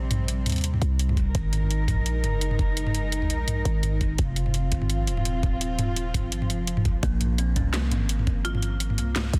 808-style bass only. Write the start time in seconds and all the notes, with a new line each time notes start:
Already playing: A#1
0.46 D#2
0.82 C2
1.35 G#1
1.88 A#1
2.23 F#1
3.30 A#1
3.65 G#1
4.19 F1
4.72 G#1
5.08 D#1
6.14 G#1
6.50 F1
6.85 C2
7.03 A#1
7.56 C2
7.92 G#1
8.98 C2
9.33 A#1